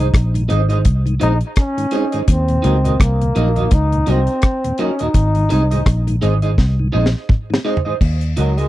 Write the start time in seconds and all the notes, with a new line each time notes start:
Already playing: C2 D#4
0.14 A#1, kick, cross-stick, closed hi-hat
0.34 G#2 D#3, closed hi-hat
0.48 G#1 G#3 C4 D#4 G#4 C5 D#5, closed hi-hat
0.69 G#2 D#3 D#4 G#4 C5 D#5, closed hi-hat
0.85 C2, kick, closed hi-hat
1.06 G#2 D#3, closed hi-hat
1.20 A#1 G#3 C4 D#4 G#4 C5 D#5, closed hi-hat
1.41 closed hi-hat
1.56 C#4, kick, cross-stick, closed hi-hat
1.77 G#2 D#3, closed hi-hat
1.91 G#3 C4 D#4 G#4 C5 D#5, closed hi-hat
2.12 G#2 D#3 D#4 G#4 C5 D#5, closed hi-hat
2.25 D#2 C#4, kick, closed hi-hat
2.31 C4
2.48 D#2 A#2, closed hi-hat
2.62 C#2 F#3 A#3 D#4 F#4 A#4 D#5, closed hi-hat
2.84 D#2 A#2 D#4 F#4 A#4 D#5, closed hi-hat
3.00 C2 A#3, kick, cross-stick, closed hi-hat
3.22 D#2 A#2, closed hi-hat
3.35 A#1 F#3 A#3 D#4 F#4 A#4 D#5, closed hi-hat
3.56 D#2 A#2 D#4 F#4 A#4 D#5, closed hi-hat
3.71 C#2 D#4, kick, closed hi-hat
3.92 D#2 A#2, closed hi-hat
4.07 C2 F#3 A#3 C4 D#4 F#4 A#4 D#5, closed hi-hat
4.27 closed hi-hat
4.42 kick, cross-stick, closed hi-hat
4.64 D#2 A#2, closed hi-hat
4.78 F#3 A#3 C#4 D#4 F#4 A#4 D#5, closed hi-hat
4.99 D#2 A#2 D#4 F#4 A#4 D#5, closed hi-hat
5.14 G#1, kick, closed hi-hat
5.35 G#2 D#3, closed hi-hat
5.49 C2 G#3 C4 D#4 G#4 C5 D#5, closed hi-hat
5.71 G#2 D#3 D#4 G#4 C5 D#5, closed hi-hat
5.86 A#1, kick, cross-stick, closed hi-hat
6.07 G#2 D#3, closed hi-hat
6.21 G#1 G#3 C4 D#4 G#4 C5 D#5, closed hi-hat
6.42 G#2 D#3 D#4 G#4 C5 D#5, closed hi-hat
6.58 C2, kick, snare
6.79 G#2 D#3
6.92 A#1 G#3 C4 D#4 G#4 C5 D#5
7.06 snare
7.29 kick, mid tom
7.50 G#2 D#3, snare
7.64 G#3 C4 D#4 G#4 C5 D#5
7.77 floor tom
7.85 G#2 D#3 D#4 G#4 C5 D#5
8.01 D#2, kick, crash
8.21 closed hi-hat
8.37 C#2 F#3 D#4 F#4 A#4 D#5, closed hi-hat
8.57 G#3 D#4 F#4 A#4 D#5, closed hi-hat